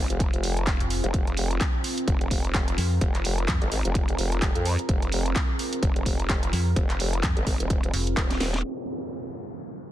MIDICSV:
0, 0, Header, 1, 6, 480
1, 0, Start_track
1, 0, Key_signature, -4, "minor"
1, 0, Tempo, 468750
1, 1165, Time_signature, 4, 2, 24, 8
1, 10157, End_track
2, 0, Start_track
2, 0, Title_t, "Ambient pad"
2, 0, Program_c, 0, 92
2, 0, Note_on_c, 0, 60, 82
2, 0, Note_on_c, 0, 65, 73
2, 0, Note_on_c, 0, 68, 74
2, 0, Note_on_c, 0, 77, 89
2, 1152, Note_off_c, 0, 77, 0
2, 1166, Note_on_c, 0, 70, 88
2, 8805, Note_off_c, 0, 60, 0
2, 8805, Note_off_c, 0, 65, 0
2, 8805, Note_off_c, 0, 68, 0
2, 8832, Note_off_c, 0, 70, 0
2, 8846, Note_on_c, 0, 60, 72
2, 8846, Note_on_c, 0, 65, 68
2, 8846, Note_on_c, 0, 68, 65
2, 8846, Note_on_c, 0, 77, 82
2, 10157, Note_off_c, 0, 60, 0
2, 10157, Note_off_c, 0, 65, 0
2, 10157, Note_off_c, 0, 68, 0
2, 10157, Note_off_c, 0, 77, 0
2, 10157, End_track
3, 0, Start_track
3, 0, Title_t, "FM bass"
3, 0, Program_c, 1, 39
3, 824, Note_on_c, 1, 29, 92
3, 1042, Note_off_c, 1, 29, 0
3, 2846, Note_on_c, 1, 41, 90
3, 3070, Note_off_c, 1, 41, 0
3, 3566, Note_on_c, 1, 41, 98
3, 3682, Note_off_c, 1, 41, 0
3, 6686, Note_on_c, 1, 41, 100
3, 6910, Note_off_c, 1, 41, 0
3, 7406, Note_on_c, 1, 41, 97
3, 7522, Note_off_c, 1, 41, 0
3, 8126, Note_on_c, 1, 29, 99
3, 8349, Note_off_c, 1, 29, 0
3, 10157, End_track
4, 0, Start_track
4, 0, Title_t, "Wobble bass"
4, 0, Program_c, 2, 39
4, 104, Note_on_c, 2, 29, 101
4, 322, Note_off_c, 2, 29, 0
4, 344, Note_on_c, 2, 29, 101
4, 802, Note_off_c, 2, 29, 0
4, 1064, Note_on_c, 2, 29, 100
4, 1150, Note_off_c, 2, 29, 0
4, 1166, Note_on_c, 2, 29, 96
4, 1629, Note_off_c, 2, 29, 0
4, 2126, Note_on_c, 2, 29, 89
4, 2349, Note_off_c, 2, 29, 0
4, 2366, Note_on_c, 2, 29, 99
4, 2829, Note_off_c, 2, 29, 0
4, 3086, Note_on_c, 2, 29, 99
4, 3550, Note_off_c, 2, 29, 0
4, 3704, Note_on_c, 2, 31, 101
4, 3790, Note_off_c, 2, 31, 0
4, 3805, Note_on_c, 2, 32, 99
4, 3922, Note_off_c, 2, 32, 0
4, 3944, Note_on_c, 2, 29, 101
4, 4269, Note_off_c, 2, 29, 0
4, 4286, Note_on_c, 2, 29, 96
4, 4642, Note_off_c, 2, 29, 0
4, 4664, Note_on_c, 2, 41, 101
4, 4882, Note_off_c, 2, 41, 0
4, 5006, Note_on_c, 2, 29, 98
4, 5469, Note_off_c, 2, 29, 0
4, 5966, Note_on_c, 2, 29, 95
4, 6189, Note_off_c, 2, 29, 0
4, 6206, Note_on_c, 2, 29, 98
4, 6670, Note_off_c, 2, 29, 0
4, 6926, Note_on_c, 2, 29, 96
4, 7389, Note_off_c, 2, 29, 0
4, 7544, Note_on_c, 2, 31, 105
4, 7629, Note_off_c, 2, 31, 0
4, 7646, Note_on_c, 2, 32, 93
4, 7762, Note_off_c, 2, 32, 0
4, 7784, Note_on_c, 2, 27, 102
4, 8110, Note_off_c, 2, 27, 0
4, 8366, Note_on_c, 2, 27, 93
4, 8590, Note_off_c, 2, 27, 0
4, 8606, Note_on_c, 2, 27, 103
4, 8830, Note_off_c, 2, 27, 0
4, 10157, End_track
5, 0, Start_track
5, 0, Title_t, "Downlifter"
5, 0, Program_c, 3, 103
5, 8846, Note_on_c, 3, 60, 68
5, 10157, Note_off_c, 3, 60, 0
5, 10157, End_track
6, 0, Start_track
6, 0, Title_t, "Drums"
6, 104, Note_on_c, 9, 42, 52
6, 205, Note_off_c, 9, 42, 0
6, 205, Note_on_c, 9, 42, 76
6, 206, Note_on_c, 9, 36, 121
6, 308, Note_off_c, 9, 36, 0
6, 308, Note_off_c, 9, 42, 0
6, 343, Note_on_c, 9, 42, 37
6, 445, Note_on_c, 9, 46, 105
6, 446, Note_off_c, 9, 42, 0
6, 548, Note_off_c, 9, 46, 0
6, 583, Note_on_c, 9, 42, 35
6, 685, Note_off_c, 9, 42, 0
6, 685, Note_on_c, 9, 42, 74
6, 686, Note_on_c, 9, 36, 121
6, 688, Note_on_c, 9, 39, 114
6, 788, Note_off_c, 9, 36, 0
6, 788, Note_off_c, 9, 42, 0
6, 790, Note_off_c, 9, 39, 0
6, 824, Note_on_c, 9, 42, 50
6, 926, Note_off_c, 9, 42, 0
6, 926, Note_on_c, 9, 46, 100
6, 1028, Note_off_c, 9, 46, 0
6, 1064, Note_on_c, 9, 42, 34
6, 1166, Note_off_c, 9, 42, 0
6, 1166, Note_on_c, 9, 36, 121
6, 1166, Note_on_c, 9, 42, 76
6, 1268, Note_off_c, 9, 36, 0
6, 1268, Note_off_c, 9, 42, 0
6, 1304, Note_on_c, 9, 42, 34
6, 1406, Note_off_c, 9, 42, 0
6, 1406, Note_on_c, 9, 46, 109
6, 1508, Note_off_c, 9, 46, 0
6, 1544, Note_on_c, 9, 42, 36
6, 1646, Note_off_c, 9, 42, 0
6, 1646, Note_on_c, 9, 36, 126
6, 1646, Note_on_c, 9, 42, 80
6, 1648, Note_on_c, 9, 39, 117
6, 1748, Note_off_c, 9, 36, 0
6, 1748, Note_off_c, 9, 42, 0
6, 1750, Note_off_c, 9, 39, 0
6, 1886, Note_on_c, 9, 46, 101
6, 1988, Note_off_c, 9, 46, 0
6, 2024, Note_on_c, 9, 42, 52
6, 2126, Note_off_c, 9, 42, 0
6, 2126, Note_on_c, 9, 36, 116
6, 2126, Note_on_c, 9, 42, 82
6, 2228, Note_off_c, 9, 36, 0
6, 2228, Note_off_c, 9, 42, 0
6, 2264, Note_on_c, 9, 42, 38
6, 2366, Note_on_c, 9, 36, 63
6, 2366, Note_on_c, 9, 46, 112
6, 2367, Note_off_c, 9, 42, 0
6, 2468, Note_off_c, 9, 36, 0
6, 2468, Note_off_c, 9, 46, 0
6, 2504, Note_on_c, 9, 42, 35
6, 2606, Note_off_c, 9, 42, 0
6, 2606, Note_on_c, 9, 36, 110
6, 2606, Note_on_c, 9, 42, 77
6, 2608, Note_on_c, 9, 39, 115
6, 2708, Note_off_c, 9, 36, 0
6, 2708, Note_off_c, 9, 42, 0
6, 2710, Note_off_c, 9, 39, 0
6, 2744, Note_on_c, 9, 42, 52
6, 2846, Note_off_c, 9, 42, 0
6, 2846, Note_on_c, 9, 46, 98
6, 2948, Note_off_c, 9, 46, 0
6, 3086, Note_on_c, 9, 36, 110
6, 3086, Note_on_c, 9, 42, 78
6, 3188, Note_off_c, 9, 36, 0
6, 3188, Note_off_c, 9, 42, 0
6, 3224, Note_on_c, 9, 42, 38
6, 3226, Note_on_c, 9, 39, 35
6, 3326, Note_off_c, 9, 42, 0
6, 3326, Note_on_c, 9, 46, 103
6, 3328, Note_off_c, 9, 39, 0
6, 3428, Note_off_c, 9, 46, 0
6, 3464, Note_on_c, 9, 42, 37
6, 3565, Note_off_c, 9, 42, 0
6, 3565, Note_on_c, 9, 42, 81
6, 3566, Note_on_c, 9, 36, 120
6, 3568, Note_on_c, 9, 39, 119
6, 3668, Note_off_c, 9, 36, 0
6, 3668, Note_off_c, 9, 42, 0
6, 3670, Note_off_c, 9, 39, 0
6, 3704, Note_on_c, 9, 42, 37
6, 3805, Note_on_c, 9, 46, 95
6, 3806, Note_off_c, 9, 42, 0
6, 3908, Note_off_c, 9, 46, 0
6, 3944, Note_on_c, 9, 42, 56
6, 4045, Note_off_c, 9, 42, 0
6, 4045, Note_on_c, 9, 42, 86
6, 4046, Note_on_c, 9, 36, 109
6, 4148, Note_off_c, 9, 36, 0
6, 4148, Note_off_c, 9, 42, 0
6, 4184, Note_on_c, 9, 42, 39
6, 4286, Note_off_c, 9, 42, 0
6, 4286, Note_on_c, 9, 46, 103
6, 4388, Note_off_c, 9, 46, 0
6, 4424, Note_on_c, 9, 42, 38
6, 4526, Note_off_c, 9, 42, 0
6, 4526, Note_on_c, 9, 36, 112
6, 4526, Note_on_c, 9, 42, 77
6, 4528, Note_on_c, 9, 39, 107
6, 4628, Note_off_c, 9, 36, 0
6, 4628, Note_off_c, 9, 42, 0
6, 4630, Note_off_c, 9, 39, 0
6, 4664, Note_on_c, 9, 42, 55
6, 4766, Note_off_c, 9, 42, 0
6, 4766, Note_on_c, 9, 46, 92
6, 4868, Note_off_c, 9, 46, 0
6, 4904, Note_on_c, 9, 42, 39
6, 5006, Note_off_c, 9, 42, 0
6, 5006, Note_on_c, 9, 36, 113
6, 5006, Note_on_c, 9, 42, 83
6, 5108, Note_off_c, 9, 36, 0
6, 5108, Note_off_c, 9, 42, 0
6, 5144, Note_on_c, 9, 42, 39
6, 5246, Note_off_c, 9, 42, 0
6, 5246, Note_on_c, 9, 46, 100
6, 5348, Note_off_c, 9, 46, 0
6, 5384, Note_on_c, 9, 42, 39
6, 5486, Note_off_c, 9, 42, 0
6, 5486, Note_on_c, 9, 36, 121
6, 5486, Note_on_c, 9, 42, 85
6, 5488, Note_on_c, 9, 39, 119
6, 5588, Note_off_c, 9, 36, 0
6, 5588, Note_off_c, 9, 42, 0
6, 5591, Note_off_c, 9, 39, 0
6, 5726, Note_on_c, 9, 46, 92
6, 5829, Note_off_c, 9, 46, 0
6, 5864, Note_on_c, 9, 42, 56
6, 5966, Note_off_c, 9, 42, 0
6, 5966, Note_on_c, 9, 36, 116
6, 5966, Note_on_c, 9, 42, 82
6, 6068, Note_off_c, 9, 36, 0
6, 6068, Note_off_c, 9, 42, 0
6, 6104, Note_on_c, 9, 42, 39
6, 6206, Note_on_c, 9, 36, 61
6, 6206, Note_on_c, 9, 46, 103
6, 6207, Note_off_c, 9, 42, 0
6, 6308, Note_off_c, 9, 36, 0
6, 6309, Note_off_c, 9, 46, 0
6, 6344, Note_on_c, 9, 42, 38
6, 6446, Note_off_c, 9, 42, 0
6, 6446, Note_on_c, 9, 36, 107
6, 6446, Note_on_c, 9, 42, 82
6, 6448, Note_on_c, 9, 39, 115
6, 6548, Note_off_c, 9, 36, 0
6, 6549, Note_off_c, 9, 42, 0
6, 6551, Note_off_c, 9, 39, 0
6, 6584, Note_on_c, 9, 42, 55
6, 6686, Note_on_c, 9, 46, 92
6, 6687, Note_off_c, 9, 42, 0
6, 6789, Note_off_c, 9, 46, 0
6, 6926, Note_on_c, 9, 36, 113
6, 6926, Note_on_c, 9, 42, 81
6, 7028, Note_off_c, 9, 36, 0
6, 7029, Note_off_c, 9, 42, 0
6, 7064, Note_on_c, 9, 42, 39
6, 7067, Note_on_c, 9, 39, 37
6, 7166, Note_on_c, 9, 46, 100
6, 7167, Note_off_c, 9, 42, 0
6, 7169, Note_off_c, 9, 39, 0
6, 7269, Note_off_c, 9, 46, 0
6, 7304, Note_on_c, 9, 42, 40
6, 7406, Note_off_c, 9, 42, 0
6, 7406, Note_on_c, 9, 36, 118
6, 7406, Note_on_c, 9, 42, 86
6, 7409, Note_on_c, 9, 39, 127
6, 7508, Note_off_c, 9, 36, 0
6, 7509, Note_off_c, 9, 42, 0
6, 7511, Note_off_c, 9, 39, 0
6, 7545, Note_on_c, 9, 42, 38
6, 7646, Note_on_c, 9, 36, 61
6, 7646, Note_on_c, 9, 46, 97
6, 7647, Note_off_c, 9, 42, 0
6, 7748, Note_off_c, 9, 36, 0
6, 7749, Note_off_c, 9, 46, 0
6, 7784, Note_on_c, 9, 42, 59
6, 7886, Note_off_c, 9, 42, 0
6, 7886, Note_on_c, 9, 36, 117
6, 7886, Note_on_c, 9, 42, 90
6, 7988, Note_off_c, 9, 36, 0
6, 7989, Note_off_c, 9, 42, 0
6, 8024, Note_on_c, 9, 42, 39
6, 8126, Note_on_c, 9, 46, 103
6, 8127, Note_off_c, 9, 42, 0
6, 8228, Note_off_c, 9, 46, 0
6, 8264, Note_on_c, 9, 42, 40
6, 8366, Note_off_c, 9, 42, 0
6, 8366, Note_on_c, 9, 36, 112
6, 8366, Note_on_c, 9, 42, 81
6, 8368, Note_on_c, 9, 39, 121
6, 8468, Note_off_c, 9, 36, 0
6, 8469, Note_off_c, 9, 42, 0
6, 8471, Note_off_c, 9, 39, 0
6, 8504, Note_on_c, 9, 38, 51
6, 8504, Note_on_c, 9, 42, 54
6, 8606, Note_off_c, 9, 38, 0
6, 8606, Note_on_c, 9, 38, 80
6, 8606, Note_on_c, 9, 46, 90
6, 8607, Note_off_c, 9, 42, 0
6, 8708, Note_off_c, 9, 38, 0
6, 8708, Note_off_c, 9, 46, 0
6, 8744, Note_on_c, 9, 38, 81
6, 8744, Note_on_c, 9, 42, 39
6, 8847, Note_off_c, 9, 38, 0
6, 8847, Note_off_c, 9, 42, 0
6, 9704, Note_on_c, 9, 42, 51
6, 9806, Note_off_c, 9, 42, 0
6, 9806, Note_on_c, 9, 42, 75
6, 9908, Note_off_c, 9, 42, 0
6, 10157, End_track
0, 0, End_of_file